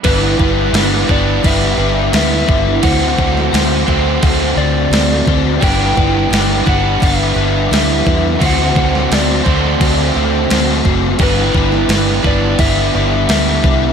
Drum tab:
CC |x---x---x---x---|x---x---x---x---|x---x---x---x---|x---x---x---x---|
SD |----o-------o---|---oo-------o---|----o-------o---|---oo-------o---|
BD |o-o---o-o-----o-|o-o---o-o-----o-|o-o---o-o-----o-|o-o---o-o-----o-|

CC |x---x---x---x---|
SD |---oo-------o---|
BD |o-o---o-o-----o-|